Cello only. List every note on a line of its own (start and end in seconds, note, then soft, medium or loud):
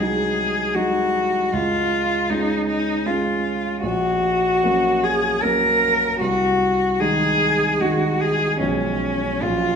0.00 0.76 G#4 medium
0.74 1.55 F#4 medium
1.53 2.31 F4 medium
2.30 2.67 D#4 medium
2.67 3.07 D#4 medium
3.06 3.82 F4 medium
3.83 5.05 F#4 medium
5.03 5.44 G#4 medium
5.43 6.20 A#4 medium
6.20 7.02 F#4 medium
7.00 7.82 G#4 medium
7.81 8.22 F#4 medium
8.20 8.60 G#4 medium
8.60 9.44 C#4 medium
9.42 9.76 F4 medium